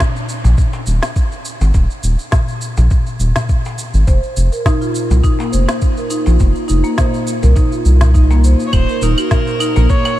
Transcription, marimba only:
0, 0, Header, 1, 2, 480
1, 0, Start_track
1, 0, Tempo, 582524
1, 1436, Time_signature, 4, 2, 24, 8
1, 8400, End_track
2, 0, Start_track
2, 0, Title_t, "Marimba"
2, 0, Program_c, 0, 12
2, 3356, Note_on_c, 0, 72, 75
2, 3713, Note_off_c, 0, 72, 0
2, 3727, Note_on_c, 0, 70, 68
2, 3826, Note_off_c, 0, 70, 0
2, 3840, Note_on_c, 0, 63, 102
2, 3913, Note_off_c, 0, 63, 0
2, 3966, Note_on_c, 0, 65, 76
2, 4071, Note_off_c, 0, 65, 0
2, 4314, Note_on_c, 0, 63, 97
2, 4439, Note_off_c, 0, 63, 0
2, 4440, Note_on_c, 0, 58, 94
2, 4542, Note_off_c, 0, 58, 0
2, 4549, Note_on_c, 0, 72, 68
2, 4910, Note_off_c, 0, 72, 0
2, 4924, Note_on_c, 0, 70, 70
2, 5024, Note_off_c, 0, 70, 0
2, 5029, Note_on_c, 0, 63, 91
2, 5107, Note_off_c, 0, 63, 0
2, 5159, Note_on_c, 0, 65, 72
2, 5267, Note_off_c, 0, 65, 0
2, 5507, Note_on_c, 0, 63, 85
2, 5635, Note_off_c, 0, 63, 0
2, 5635, Note_on_c, 0, 58, 94
2, 5739, Note_off_c, 0, 58, 0
2, 5751, Note_on_c, 0, 72, 76
2, 6111, Note_off_c, 0, 72, 0
2, 6118, Note_on_c, 0, 70, 75
2, 6221, Note_off_c, 0, 70, 0
2, 6228, Note_on_c, 0, 63, 93
2, 6306, Note_off_c, 0, 63, 0
2, 6360, Note_on_c, 0, 65, 68
2, 6468, Note_off_c, 0, 65, 0
2, 6709, Note_on_c, 0, 63, 91
2, 6836, Note_off_c, 0, 63, 0
2, 6844, Note_on_c, 0, 58, 97
2, 6944, Note_off_c, 0, 58, 0
2, 6958, Note_on_c, 0, 72, 66
2, 7197, Note_off_c, 0, 72, 0
2, 7327, Note_on_c, 0, 70, 64
2, 7426, Note_off_c, 0, 70, 0
2, 7439, Note_on_c, 0, 63, 88
2, 7512, Note_off_c, 0, 63, 0
2, 7567, Note_on_c, 0, 66, 73
2, 7671, Note_off_c, 0, 66, 0
2, 7911, Note_on_c, 0, 63, 99
2, 8037, Note_off_c, 0, 63, 0
2, 8042, Note_on_c, 0, 58, 96
2, 8143, Note_off_c, 0, 58, 0
2, 8153, Note_on_c, 0, 73, 79
2, 8400, Note_off_c, 0, 73, 0
2, 8400, End_track
0, 0, End_of_file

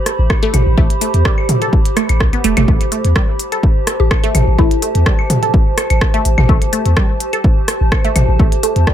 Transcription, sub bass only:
0, 0, Header, 1, 2, 480
1, 0, Start_track
1, 0, Key_signature, 0, "minor"
1, 0, Tempo, 476190
1, 782, Time_signature, 4, 2, 24, 8
1, 9011, End_track
2, 0, Start_track
2, 0, Title_t, "Sub bass"
2, 0, Program_c, 0, 38
2, 189, Note_on_c, 0, 33, 85
2, 279, Note_off_c, 0, 33, 0
2, 541, Note_on_c, 0, 33, 92
2, 644, Note_off_c, 0, 33, 0
2, 670, Note_on_c, 0, 33, 95
2, 759, Note_off_c, 0, 33, 0
2, 782, Note_on_c, 0, 33, 101
2, 884, Note_off_c, 0, 33, 0
2, 1150, Note_on_c, 0, 40, 87
2, 1239, Note_off_c, 0, 40, 0
2, 2110, Note_on_c, 0, 33, 88
2, 2222, Note_on_c, 0, 36, 79
2, 2237, Note_off_c, 0, 33, 0
2, 2324, Note_off_c, 0, 36, 0
2, 2462, Note_on_c, 0, 28, 95
2, 2564, Note_off_c, 0, 28, 0
2, 2590, Note_on_c, 0, 31, 83
2, 2679, Note_off_c, 0, 31, 0
2, 2702, Note_on_c, 0, 33, 96
2, 2804, Note_off_c, 0, 33, 0
2, 3070, Note_on_c, 0, 40, 82
2, 3159, Note_off_c, 0, 40, 0
2, 4030, Note_on_c, 0, 33, 88
2, 4119, Note_off_c, 0, 33, 0
2, 4382, Note_on_c, 0, 33, 91
2, 4484, Note_off_c, 0, 33, 0
2, 4510, Note_on_c, 0, 33, 92
2, 4599, Note_off_c, 0, 33, 0
2, 4622, Note_on_c, 0, 33, 99
2, 4724, Note_off_c, 0, 33, 0
2, 4990, Note_on_c, 0, 40, 84
2, 5079, Note_off_c, 0, 40, 0
2, 5950, Note_on_c, 0, 33, 85
2, 6039, Note_off_c, 0, 33, 0
2, 6302, Note_on_c, 0, 33, 90
2, 6404, Note_off_c, 0, 33, 0
2, 6430, Note_on_c, 0, 33, 93
2, 6519, Note_off_c, 0, 33, 0
2, 6542, Note_on_c, 0, 33, 101
2, 6644, Note_off_c, 0, 33, 0
2, 6910, Note_on_c, 0, 40, 83
2, 6999, Note_off_c, 0, 40, 0
2, 7870, Note_on_c, 0, 33, 85
2, 7959, Note_off_c, 0, 33, 0
2, 8222, Note_on_c, 0, 33, 92
2, 8324, Note_off_c, 0, 33, 0
2, 8350, Note_on_c, 0, 33, 90
2, 8439, Note_off_c, 0, 33, 0
2, 8462, Note_on_c, 0, 33, 98
2, 8564, Note_off_c, 0, 33, 0
2, 8830, Note_on_c, 0, 40, 84
2, 8919, Note_off_c, 0, 40, 0
2, 9011, End_track
0, 0, End_of_file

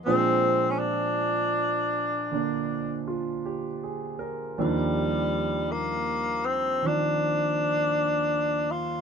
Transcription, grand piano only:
0, 0, Header, 1, 2, 480
1, 0, Start_track
1, 0, Key_signature, -3, "major"
1, 0, Tempo, 1125704
1, 23, Time_signature, 4, 2, 24, 8
1, 3842, End_track
2, 0, Start_track
2, 0, Title_t, "Grand piano"
2, 0, Program_c, 0, 0
2, 0, Control_c, 0, 64, 127
2, 25, Note_on_c, 0, 46, 47
2, 27, Note_on_c, 0, 53, 41
2, 29, Control_c, 0, 64, 0
2, 29, Note_on_c, 0, 56, 40
2, 31, Note_on_c, 0, 62, 48
2, 32, Note_on_c, 0, 60, 38
2, 95, Control_c, 0, 64, 127
2, 987, Note_on_c, 0, 50, 32
2, 992, Note_off_c, 0, 62, 0
2, 993, Note_on_c, 0, 58, 29
2, 999, Note_on_c, 0, 62, 33
2, 1311, Note_on_c, 0, 65, 35
2, 1473, Note_on_c, 0, 67, 35
2, 1557, Note_off_c, 0, 65, 0
2, 1634, Note_on_c, 0, 68, 32
2, 1768, Note_off_c, 0, 67, 0
2, 1787, Note_on_c, 0, 70, 35
2, 1879, Note_off_c, 0, 68, 0
2, 1947, Note_off_c, 0, 46, 0
2, 1947, Note_off_c, 0, 50, 0
2, 1948, Note_off_c, 0, 53, 0
2, 1950, Note_off_c, 0, 56, 0
2, 1950, Note_off_c, 0, 58, 0
2, 1951, Note_off_c, 0, 60, 0
2, 1951, Note_off_c, 0, 62, 0
2, 1953, Control_c, 0, 64, 0
2, 1953, Note_on_c, 0, 39, 43
2, 1954, Note_on_c, 0, 51, 39
2, 1954, Note_on_c, 0, 53, 41
2, 1957, Note_on_c, 0, 62, 46
2, 1958, Note_on_c, 0, 55, 40
2, 2024, Control_c, 0, 64, 127
2, 2035, Note_off_c, 0, 70, 0
2, 2904, Note_off_c, 0, 51, 0
2, 2908, Note_off_c, 0, 53, 0
2, 2910, Note_on_c, 0, 51, 31
2, 2915, Note_on_c, 0, 53, 27
2, 2921, Note_on_c, 0, 60, 34
2, 3842, Note_off_c, 0, 39, 0
2, 3842, Note_off_c, 0, 51, 0
2, 3842, Note_off_c, 0, 53, 0
2, 3842, Note_off_c, 0, 55, 0
2, 3842, Note_off_c, 0, 60, 0
2, 3842, Note_off_c, 0, 62, 0
2, 3842, End_track
0, 0, End_of_file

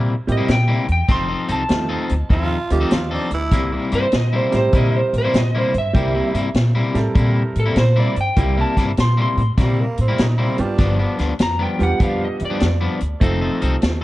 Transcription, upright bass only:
0, 0, Header, 1, 2, 480
1, 0, Start_track
1, 0, Tempo, 605938
1, 869, Time_signature, 4, 2, 24, 8
1, 11121, End_track
2, 0, Start_track
2, 0, Title_t, "Upright bass"
2, 0, Program_c, 0, 32
2, 0, Note_on_c, 0, 46, 83
2, 102, Note_off_c, 0, 46, 0
2, 225, Note_on_c, 0, 45, 87
2, 325, Note_off_c, 0, 45, 0
2, 388, Note_on_c, 0, 46, 92
2, 584, Note_off_c, 0, 46, 0
2, 705, Note_on_c, 0, 40, 86
2, 805, Note_off_c, 0, 40, 0
2, 861, Note_on_c, 0, 29, 89
2, 1059, Note_off_c, 0, 29, 0
2, 1185, Note_on_c, 0, 36, 89
2, 1285, Note_off_c, 0, 36, 0
2, 1348, Note_on_c, 0, 39, 88
2, 1544, Note_off_c, 0, 39, 0
2, 1671, Note_on_c, 0, 38, 86
2, 1769, Note_off_c, 0, 38, 0
2, 1824, Note_on_c, 0, 39, 93
2, 2022, Note_off_c, 0, 39, 0
2, 2146, Note_on_c, 0, 38, 91
2, 2246, Note_off_c, 0, 38, 0
2, 2309, Note_on_c, 0, 39, 102
2, 2505, Note_off_c, 0, 39, 0
2, 2622, Note_on_c, 0, 38, 86
2, 2784, Note_off_c, 0, 38, 0
2, 2784, Note_on_c, 0, 36, 88
2, 2982, Note_off_c, 0, 36, 0
2, 3109, Note_on_c, 0, 43, 84
2, 3208, Note_off_c, 0, 43, 0
2, 3269, Note_on_c, 0, 46, 83
2, 3465, Note_off_c, 0, 46, 0
2, 3592, Note_on_c, 0, 45, 87
2, 3690, Note_off_c, 0, 45, 0
2, 3748, Note_on_c, 0, 46, 92
2, 3944, Note_off_c, 0, 46, 0
2, 4065, Note_on_c, 0, 45, 84
2, 4165, Note_off_c, 0, 45, 0
2, 4230, Note_on_c, 0, 46, 96
2, 4426, Note_off_c, 0, 46, 0
2, 4550, Note_on_c, 0, 43, 93
2, 4649, Note_off_c, 0, 43, 0
2, 4707, Note_on_c, 0, 36, 92
2, 4904, Note_off_c, 0, 36, 0
2, 5022, Note_on_c, 0, 43, 86
2, 5124, Note_off_c, 0, 43, 0
2, 5181, Note_on_c, 0, 46, 92
2, 5380, Note_off_c, 0, 46, 0
2, 5505, Note_on_c, 0, 45, 85
2, 5606, Note_off_c, 0, 45, 0
2, 5668, Note_on_c, 0, 46, 90
2, 5865, Note_off_c, 0, 46, 0
2, 5990, Note_on_c, 0, 45, 88
2, 6089, Note_off_c, 0, 45, 0
2, 6148, Note_on_c, 0, 46, 101
2, 6345, Note_off_c, 0, 46, 0
2, 6471, Note_on_c, 0, 43, 76
2, 6570, Note_off_c, 0, 43, 0
2, 6629, Note_on_c, 0, 36, 102
2, 6825, Note_off_c, 0, 36, 0
2, 6947, Note_on_c, 0, 43, 79
2, 7047, Note_off_c, 0, 43, 0
2, 7113, Note_on_c, 0, 46, 88
2, 7308, Note_off_c, 0, 46, 0
2, 7427, Note_on_c, 0, 45, 92
2, 7527, Note_off_c, 0, 45, 0
2, 7592, Note_on_c, 0, 46, 82
2, 7787, Note_off_c, 0, 46, 0
2, 7913, Note_on_c, 0, 45, 93
2, 8011, Note_off_c, 0, 45, 0
2, 8076, Note_on_c, 0, 46, 95
2, 8270, Note_off_c, 0, 46, 0
2, 8391, Note_on_c, 0, 43, 85
2, 8490, Note_off_c, 0, 43, 0
2, 8547, Note_on_c, 0, 31, 84
2, 8744, Note_off_c, 0, 31, 0
2, 8869, Note_on_c, 0, 38, 80
2, 8969, Note_off_c, 0, 38, 0
2, 9029, Note_on_c, 0, 41, 88
2, 9225, Note_off_c, 0, 41, 0
2, 9348, Note_on_c, 0, 40, 89
2, 9448, Note_off_c, 0, 40, 0
2, 9506, Note_on_c, 0, 41, 85
2, 9704, Note_off_c, 0, 41, 0
2, 9828, Note_on_c, 0, 40, 93
2, 9928, Note_off_c, 0, 40, 0
2, 9995, Note_on_c, 0, 41, 101
2, 10190, Note_off_c, 0, 41, 0
2, 10309, Note_on_c, 0, 38, 84
2, 10409, Note_off_c, 0, 38, 0
2, 10469, Note_on_c, 0, 29, 95
2, 10665, Note_off_c, 0, 29, 0
2, 10792, Note_on_c, 0, 36, 92
2, 10891, Note_off_c, 0, 36, 0
2, 10954, Note_on_c, 0, 39, 85
2, 11121, Note_off_c, 0, 39, 0
2, 11121, End_track
0, 0, End_of_file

